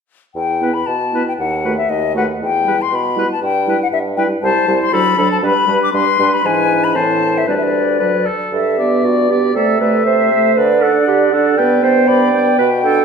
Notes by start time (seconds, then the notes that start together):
0.35 E2 G5
0.61 B3 E4 B4
0.74 B5
0.86 B2 A5
1.13 B3 E4 B4
1.28 G5
1.39 D#2 F#5
1.64 A3 F#4 B4
1.77 E5
1.90 D#2 D#5
2.15 A3 F#4 B4 F#5
2.41 E2 G5
2.65 G3 E4 B4
2.82 C6
2.92 B2 B5
3.16 G3 E4 B4
3.32 A5
3.42 G2 G5
3.67 G3 E4 B4
3.83 F#5
3.92 G2 E5
4.17 G3 E4 B4 G5
4.42 C2 G3 E4 C5 A5
4.67 C2 G3 E4 C5
4.83 C6
4.92 D2 F#3 D4 A4 B5
5.17 D2 F#3 D4 A4
5.32 A5
5.42 G2 G3 D4 B4 B5
5.67 G2 G3 D4 B4
5.83 D6
5.92 G2 G3 D4 B4 C6
6.19 G2 G3 D4 B4
6.34 B5
6.44 G#2 E3 D4 B4 G#5
6.84 B5
6.96 A2 E3 C4 C5 A5
7.38 E5
7.47 D2 G3 D4 B4 D5
7.57 E5
7.63 D5
7.99 F#3 D4 B4
8.26 A4
8.53 G2 A4 E5
8.78 B3 G4 D5
9.04 G2 F#4 D5
9.29 B3 G4 D5
9.54 C3 A3 A4 E5
9.80 A3 B4 E5
10.06 C3 C5 E5
10.32 A3 E5
10.56 D3 B4 D5
10.82 D4 A4 F#5
11.07 D3 G4
11.33 D4 A4 F#5
11.57 G2 B3 B4 G5
11.83 B3 C5 G5
12.07 G2 D5 B5
12.33 B3 G5
12.58 B2 B4
12.83 D4 A4 G5